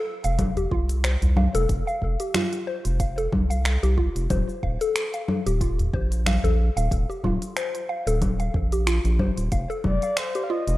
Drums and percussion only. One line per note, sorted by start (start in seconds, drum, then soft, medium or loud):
0.24 closed hi-hat soft
0.24 shaker medium
0.39 kick loud
0.39 closed hi-hat medium
0.39 low conga medium
0.39 shaker medium
0.56 closed hi-hat soft
0.56 udu medium
0.56 shaker soft
0.71 kick loud
0.89 closed hi-hat soft
0.89 shaker medium
1.04 finger snap loud
1.04 closed hi-hat medium
1.04 shaker medium
1.22 closed hi-hat soft
1.22 udu medium
1.22 shaker soft
1.37 low conga medium
1.55 closed hi-hat soft
1.55 shaker medium
1.69 kick loud
1.69 closed hi-hat medium
1.69 shaker medium
1.88 shaker soft
2.02 kick medium
2.20 closed hi-hat soft
2.20 shaker medium
2.34 finger snap loud
2.34 closed hi-hat medium
2.34 low conga medium
2.34 shaker medium
2.53 closed hi-hat soft
2.53 shaker soft
2.85 closed hi-hat soft
2.85 shaker medium
3.00 kick loud
3.00 closed hi-hat medium
3.00 shaker medium
3.18 closed hi-hat soft
3.18 shaker soft
3.32 kick loud
3.32 udu medium
3.32 low conga medium
3.51 closed hi-hat soft
3.51 shaker medium
3.65 finger snap loud
3.65 closed hi-hat medium
3.65 shaker medium
3.83 closed hi-hat soft
3.83 shaker soft
3.98 kick medium
4.16 closed hi-hat soft
4.16 shaker medium
4.30 kick loud
4.30 closed hi-hat medium
4.30 low conga medium
4.30 shaker medium
4.49 shaker soft
4.63 kick medium
4.81 closed hi-hat soft
4.81 shaker medium
4.96 finger snap loud
4.96 closed hi-hat medium
4.96 shaker medium
5.14 closed hi-hat soft
5.14 shaker soft
5.28 low conga medium
5.47 closed hi-hat soft
5.47 shaker medium
5.61 kick loud
5.61 closed hi-hat medium
5.61 shaker medium
5.79 closed hi-hat soft
5.79 udu loud
5.79 shaker soft
5.93 kick loud
6.12 closed hi-hat soft
6.12 shaker medium
6.26 finger snap loud
6.26 closed hi-hat medium
6.26 low conga medium
6.26 shaker medium
6.43 closed hi-hat soft
6.43 udu medium
6.43 shaker soft
6.77 closed hi-hat soft
6.77 shaker medium
6.91 kick loud
6.91 closed hi-hat medium
6.91 shaker medium
7.11 shaker soft
7.24 kick medium
7.24 low conga medium
7.42 closed hi-hat soft
7.42 shaker medium
7.57 finger snap loud
7.57 closed hi-hat medium
7.57 shaker medium
7.75 closed hi-hat soft
7.75 shaker soft
8.07 closed hi-hat soft
8.07 shaker medium
8.22 kick loud
8.22 closed hi-hat medium
8.22 low conga medium
8.22 shaker medium
8.40 closed hi-hat soft
8.40 shaker soft
8.54 kick loud
8.54 udu medium
8.72 closed hi-hat soft
8.72 shaker medium
8.87 finger snap loud
8.87 closed hi-hat medium
8.87 shaker medium
9.05 closed hi-hat soft
9.05 shaker soft
9.19 kick medium
9.19 low conga medium
9.38 closed hi-hat soft
9.38 shaker medium
9.52 kick loud
9.52 closed hi-hat medium
9.52 shaker medium
9.70 shaker soft
9.84 kick medium
9.84 low conga medium
10.02 closed hi-hat soft
10.02 shaker medium
10.17 finger snap loud
10.17 closed hi-hat medium
10.17 shaker medium
10.35 closed hi-hat soft
10.35 shaker soft
10.68 closed hi-hat soft
10.68 shaker medium